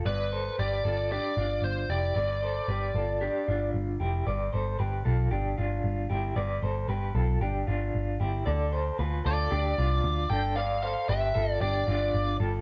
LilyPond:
<<
  \new Staff \with { instrumentName = "Lead electric guitar" } { \time 4/4 \key g \mixolydian \tempo 4 = 114 b'4 d''4 d''4 c''8 d''8~ | d''2. r4 | r1 | r1 |
r4. d''2 g''8 | f''8 f''8 e''4 d''4. r8 | }
  \new Staff \with { instrumentName = "Clean electric guitar" } { \time 4/4 \key g \mixolydian <b' d''>8 <a' c''>8 <g' b'>8 <f' a'>8 <d' g'>8 <d' f'>4 <e' g'>8 | <b' d''>8 <a' c''>8 <g' b'>8 <f' a'>8 <d' g'>8 <d' f'>4 <e' g'>8 | <b' d''>8 <a' c''>8 <g' b'>8 <f' a'>8 <d' g'>8 <d' f'>4 <e' g'>8 | <b' d''>8 <a' c''>8 <g' b'>8 <f' a'>8 <d' g'>8 <d' f'>4 <e' g'>8 |
<a' d''>8 <a' c''>8 <f' b'>8 <f' a'>8 <d' g'>8 <d' f'>4 <d' a'>8 | <b' d''>8 <a' c''>8 <g' b'>8 <f' a'>8 <d' g'>8 <d' f'>4 <f' a'>8 | }
  \new Staff \with { instrumentName = "Picked electric bass" } { \clef bass \time 4/4 \key g \mixolydian g,,4 g,,8 g,,8. r16 g,,8 g,,8 f,,8 | g,,4 g,,8 g,,8. r16 g,,8 g,,8 f,,8 | g,,8 g,,8 g,,8 b,,8 g,,8 g,,8 g,,8 g,,8 | g,,8 g,,8 g,,8 b,,8 g,,8 g,,8 g,,8 g,,8 |
d,4 d,8 d,8 d,8 c,8 d,8 g,,8~ | g,,4 g,,8 g,,8 g,,8 g,,8 g,,8 g,,8 | }
>>